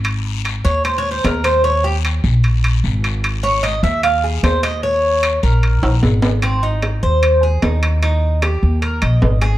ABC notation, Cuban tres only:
X:1
M:4/4
L:1/8
Q:1/4=150
K:Ab
V:1 name="Cuban tres"
z3 d (3c d c B c | d G z6 | z d e _f =f A c e | d3 B3 z2 |
C E2 c2 A E2 | E2 G2 B e2 A |]